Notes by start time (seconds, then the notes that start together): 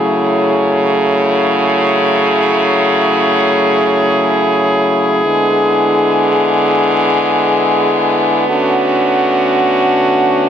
Already playing: C#3 F#3 A3 E4 G#4
5.24 D3 G#3 B3
8.49 D3 A3 C#4 F#4